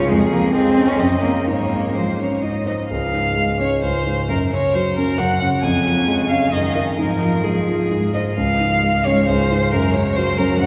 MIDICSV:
0, 0, Header, 1, 4, 480
1, 0, Start_track
1, 0, Key_signature, -5, "major"
1, 0, Tempo, 446761
1, 102, Time_signature, 3, 2, 24, 8
1, 1063, Tempo, 479233
1, 2983, Tempo, 460829
1, 4423, Tempo, 446429
1, 6823, Tempo, 461894
1, 9223, Tempo, 442152
1, 11212, End_track
2, 0, Start_track
2, 0, Title_t, "Violin"
2, 0, Program_c, 0, 40
2, 0, Note_on_c, 0, 65, 41
2, 99, Note_on_c, 0, 68, 46
2, 115, Note_off_c, 0, 65, 0
2, 575, Note_off_c, 0, 68, 0
2, 582, Note_on_c, 0, 68, 41
2, 1059, Note_on_c, 0, 75, 40
2, 1075, Note_off_c, 0, 68, 0
2, 1542, Note_on_c, 0, 73, 33
2, 1557, Note_off_c, 0, 75, 0
2, 1980, Note_off_c, 0, 73, 0
2, 2020, Note_on_c, 0, 72, 37
2, 2270, Note_on_c, 0, 73, 29
2, 2285, Note_off_c, 0, 72, 0
2, 2502, Note_on_c, 0, 75, 31
2, 2517, Note_off_c, 0, 73, 0
2, 2743, Note_off_c, 0, 75, 0
2, 2748, Note_on_c, 0, 75, 36
2, 2829, Note_off_c, 0, 75, 0
2, 2987, Note_on_c, 0, 77, 49
2, 3693, Note_off_c, 0, 77, 0
2, 3709, Note_on_c, 0, 73, 44
2, 3939, Note_off_c, 0, 73, 0
2, 3946, Note_on_c, 0, 72, 45
2, 4414, Note_off_c, 0, 72, 0
2, 4425, Note_on_c, 0, 70, 53
2, 4511, Note_off_c, 0, 70, 0
2, 4674, Note_on_c, 0, 73, 51
2, 4917, Note_on_c, 0, 72, 55
2, 4933, Note_off_c, 0, 73, 0
2, 5144, Note_off_c, 0, 72, 0
2, 5151, Note_on_c, 0, 70, 50
2, 5384, Note_on_c, 0, 78, 59
2, 5400, Note_off_c, 0, 70, 0
2, 5609, Note_off_c, 0, 78, 0
2, 5615, Note_on_c, 0, 78, 61
2, 5701, Note_off_c, 0, 78, 0
2, 5857, Note_on_c, 0, 80, 72
2, 6564, Note_off_c, 0, 80, 0
2, 6579, Note_on_c, 0, 77, 53
2, 6822, Note_on_c, 0, 75, 54
2, 6837, Note_off_c, 0, 77, 0
2, 7050, Note_off_c, 0, 75, 0
2, 7057, Note_on_c, 0, 75, 49
2, 7140, Note_off_c, 0, 75, 0
2, 7294, Note_on_c, 0, 70, 54
2, 7775, Note_on_c, 0, 68, 41
2, 7790, Note_off_c, 0, 70, 0
2, 8499, Note_off_c, 0, 68, 0
2, 8505, Note_on_c, 0, 75, 45
2, 8589, Note_off_c, 0, 75, 0
2, 8735, Note_on_c, 0, 77, 64
2, 9464, Note_on_c, 0, 73, 52
2, 9480, Note_off_c, 0, 77, 0
2, 9700, Note_off_c, 0, 73, 0
2, 9707, Note_on_c, 0, 72, 58
2, 10181, Note_on_c, 0, 70, 67
2, 10198, Note_off_c, 0, 72, 0
2, 10418, Note_off_c, 0, 70, 0
2, 10424, Note_on_c, 0, 73, 59
2, 10660, Note_on_c, 0, 72, 65
2, 10676, Note_off_c, 0, 73, 0
2, 10896, Note_on_c, 0, 70, 56
2, 10912, Note_off_c, 0, 72, 0
2, 11119, Note_off_c, 0, 70, 0
2, 11125, Note_on_c, 0, 78, 66
2, 11212, Note_off_c, 0, 78, 0
2, 11212, End_track
3, 0, Start_track
3, 0, Title_t, "Cello"
3, 0, Program_c, 1, 42
3, 98, Note_on_c, 1, 56, 68
3, 184, Note_off_c, 1, 56, 0
3, 340, Note_on_c, 1, 58, 59
3, 567, Note_off_c, 1, 58, 0
3, 574, Note_on_c, 1, 60, 61
3, 944, Note_on_c, 1, 61, 58
3, 960, Note_off_c, 1, 60, 0
3, 1063, Note_on_c, 1, 60, 54
3, 1078, Note_off_c, 1, 61, 0
3, 1288, Note_off_c, 1, 60, 0
3, 1294, Note_on_c, 1, 58, 50
3, 1528, Note_off_c, 1, 58, 0
3, 1534, Note_on_c, 1, 58, 50
3, 2021, Note_on_c, 1, 56, 35
3, 2036, Note_off_c, 1, 58, 0
3, 2500, Note_off_c, 1, 56, 0
3, 3473, Note_on_c, 1, 56, 30
3, 3827, Note_off_c, 1, 56, 0
3, 3941, Note_on_c, 1, 56, 36
3, 4298, Note_off_c, 1, 56, 0
3, 4913, Note_on_c, 1, 49, 38
3, 5267, Note_off_c, 1, 49, 0
3, 5392, Note_on_c, 1, 49, 42
3, 5744, Note_off_c, 1, 49, 0
3, 5857, Note_on_c, 1, 49, 47
3, 6829, Note_on_c, 1, 51, 39
3, 6844, Note_off_c, 1, 49, 0
3, 7297, Note_off_c, 1, 51, 0
3, 7303, Note_on_c, 1, 53, 39
3, 7770, Note_off_c, 1, 53, 0
3, 7776, Note_on_c, 1, 53, 35
3, 8253, Note_off_c, 1, 53, 0
3, 8261, Note_on_c, 1, 56, 33
3, 8529, Note_off_c, 1, 56, 0
3, 8753, Note_on_c, 1, 56, 47
3, 10195, Note_on_c, 1, 54, 50
3, 10212, Note_off_c, 1, 56, 0
3, 11212, Note_off_c, 1, 54, 0
3, 11212, End_track
4, 0, Start_track
4, 0, Title_t, "Grand piano"
4, 0, Program_c, 2, 0
4, 0, Control_c, 2, 64, 127
4, 0, Note_on_c, 2, 37, 42
4, 0, Note_on_c, 2, 65, 38
4, 0, Note_on_c, 2, 68, 39
4, 108, Note_on_c, 2, 41, 49
4, 123, Control_c, 2, 64, 0
4, 127, Note_off_c, 2, 65, 0
4, 128, Note_off_c, 2, 68, 0
4, 132, Note_off_c, 2, 37, 0
4, 322, Control_c, 2, 64, 127
4, 345, Note_on_c, 2, 53, 35
4, 587, Note_on_c, 2, 56, 39
4, 727, Note_off_c, 2, 53, 0
4, 828, Note_on_c, 2, 61, 37
4, 968, Note_off_c, 2, 56, 0
4, 1037, Note_off_c, 2, 41, 0
4, 1063, Note_on_c, 2, 42, 38
4, 1067, Note_off_c, 2, 61, 0
4, 1085, Control_c, 2, 64, 0
4, 1233, Control_c, 2, 64, 127
4, 1308, Note_on_c, 2, 61, 28
4, 1308, Note_on_c, 2, 73, 30
4, 1522, Note_off_c, 2, 61, 0
4, 1522, Note_off_c, 2, 73, 0
4, 1526, Note_off_c, 2, 42, 0
4, 1546, Note_on_c, 2, 44, 32
4, 1563, Control_c, 2, 64, 0
4, 1727, Control_c, 2, 64, 127
4, 1791, Note_on_c, 2, 56, 21
4, 2035, Note_on_c, 2, 53, 24
4, 2174, Note_off_c, 2, 56, 0
4, 2270, Note_on_c, 2, 61, 23
4, 2412, Note_off_c, 2, 53, 0
4, 2477, Note_off_c, 2, 44, 0
4, 2505, Note_off_c, 2, 61, 0
4, 2507, Note_on_c, 2, 44, 28
4, 2522, Control_c, 2, 64, 0
4, 2714, Control_c, 2, 64, 127
4, 2737, Note_on_c, 2, 63, 21
4, 2739, Note_on_c, 2, 72, 24
4, 2955, Note_off_c, 2, 63, 0
4, 2956, Note_off_c, 2, 72, 0
4, 2970, Note_off_c, 2, 44, 0
4, 2979, Note_on_c, 2, 37, 35
4, 3005, Control_c, 2, 64, 0
4, 3202, Control_c, 2, 64, 127
4, 3223, Note_on_c, 2, 44, 24
4, 3457, Note_on_c, 2, 56, 28
4, 3608, Note_off_c, 2, 44, 0
4, 3700, Note_on_c, 2, 61, 27
4, 3846, Note_off_c, 2, 56, 0
4, 3930, Note_off_c, 2, 37, 0
4, 3946, Note_on_c, 2, 37, 30
4, 4086, Note_off_c, 2, 61, 0
4, 4181, Note_on_c, 2, 44, 28
4, 4409, Note_off_c, 2, 37, 0
4, 4422, Note_off_c, 2, 44, 0
4, 4425, Note_on_c, 2, 42, 40
4, 4445, Control_c, 2, 64, 0
4, 4618, Control_c, 2, 64, 127
4, 4670, Note_on_c, 2, 49, 31
4, 4921, Note_on_c, 2, 54, 34
4, 5057, Note_off_c, 2, 49, 0
4, 5162, Note_on_c, 2, 61, 34
4, 5297, Note_off_c, 2, 54, 0
4, 5382, Note_off_c, 2, 42, 0
4, 5398, Note_on_c, 2, 42, 37
4, 5536, Note_off_c, 2, 61, 0
4, 5636, Note_on_c, 2, 49, 33
4, 5855, Note_off_c, 2, 42, 0
4, 5869, Note_off_c, 2, 49, 0
4, 5869, Note_on_c, 2, 41, 47
4, 5884, Control_c, 2, 64, 0
4, 6048, Control_c, 2, 64, 127
4, 6105, Note_on_c, 2, 53, 31
4, 6340, Note_on_c, 2, 56, 32
4, 6488, Note_off_c, 2, 53, 0
4, 6583, Note_on_c, 2, 61, 38
4, 6725, Note_off_c, 2, 56, 0
4, 6797, Note_off_c, 2, 41, 0
4, 6823, Note_off_c, 2, 61, 0
4, 6823, Note_on_c, 2, 42, 40
4, 6844, Control_c, 2, 64, 0
4, 7027, Control_c, 2, 64, 127
4, 7061, Note_on_c, 2, 63, 29
4, 7065, Note_on_c, 2, 70, 31
4, 7277, Note_off_c, 2, 63, 0
4, 7279, Note_off_c, 2, 70, 0
4, 7286, Note_off_c, 2, 42, 0
4, 7303, Note_on_c, 2, 44, 35
4, 7323, Control_c, 2, 64, 0
4, 7465, Control_c, 2, 64, 127
4, 7548, Note_on_c, 2, 53, 28
4, 7786, Note_on_c, 2, 56, 28
4, 7929, Note_off_c, 2, 53, 0
4, 8022, Note_on_c, 2, 65, 31
4, 8170, Note_off_c, 2, 56, 0
4, 8238, Note_off_c, 2, 44, 0
4, 8265, Note_off_c, 2, 65, 0
4, 8266, Note_on_c, 2, 44, 33
4, 8286, Control_c, 2, 64, 0
4, 8482, Control_c, 2, 64, 127
4, 8509, Note_on_c, 2, 63, 27
4, 8513, Note_on_c, 2, 72, 30
4, 8724, Note_off_c, 2, 63, 0
4, 8726, Note_off_c, 2, 72, 0
4, 8733, Note_off_c, 2, 44, 0
4, 8749, Note_on_c, 2, 37, 37
4, 8767, Control_c, 2, 64, 0
4, 8919, Control_c, 2, 64, 127
4, 8986, Note_on_c, 2, 44, 31
4, 9226, Note_on_c, 2, 56, 31
4, 9370, Note_off_c, 2, 44, 0
4, 9476, Note_on_c, 2, 61, 34
4, 9616, Note_off_c, 2, 56, 0
4, 9703, Note_off_c, 2, 37, 0
4, 9720, Note_on_c, 2, 37, 40
4, 9861, Note_off_c, 2, 61, 0
4, 9963, Note_on_c, 2, 44, 34
4, 10182, Note_off_c, 2, 37, 0
4, 10198, Note_off_c, 2, 44, 0
4, 10203, Note_on_c, 2, 42, 48
4, 10214, Control_c, 2, 64, 0
4, 10354, Control_c, 2, 64, 127
4, 10447, Note_on_c, 2, 49, 37
4, 10685, Note_on_c, 2, 54, 39
4, 10819, Note_off_c, 2, 49, 0
4, 10911, Note_on_c, 2, 61, 37
4, 11055, Note_off_c, 2, 54, 0
4, 11127, Note_off_c, 2, 42, 0
4, 11144, Note_on_c, 2, 42, 43
4, 11212, Note_off_c, 2, 42, 0
4, 11212, Note_off_c, 2, 61, 0
4, 11212, End_track
0, 0, End_of_file